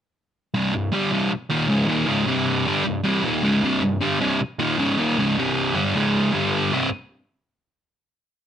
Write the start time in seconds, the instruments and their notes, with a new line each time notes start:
0.54 distorted electric guitar C2 G2 C3
0.74 distorted electric guitar C2 G2
0.92 distorted electric guitar G2 D3 G3
1.12 distorted electric guitar C2 G2 C3
1.32 muted distorted electric guitar stroke
1.50 distorted electric guitar D#2 A#2 D#3
1.68 distorted electric guitar C#2 G#2 C#3
1.87 distorted electric guitar D#2 A#2 D#3
2.06 distorted electric guitar C#2 G#2 C#3
2.26 distorted electric guitar C2 G2 C3
2.66 distorted electric guitar G2 D3 G3
2.85 distorted electric guitar C2 G2
3.04 distorted electric guitar C2 G2 C3
3.24 distorted electric guitar D#2 A#2 D#3
3.43 distorted electric guitar C#2 G#2 C#3
3.63 distorted electric guitar C2 G2 C3
3.82 distorted electric guitar C2 G2
4.01 distorted electric guitar G2 D3 G3
4.20 distorted electric guitar C2 G2 C3
4.41 muted distorted electric guitar stroke
4.59 distorted electric guitar D#2 A#2 D#3
4.78 distorted electric guitar C#2 G#2 C#3
4.98 distorted electric guitar D#2 A#2 D#3
5.18 distorted electric guitar C#2 G#2 C#3
5.38 distorted electric guitar C2 G2 C3
5.74 distorted electric guitar G2 D3 G3
5.95 distorted electric guitar C#2 G#2 C#3
6.33 distorted electric guitar G2 D3 G3
6.73 distorted electric guitar C2 G2 C3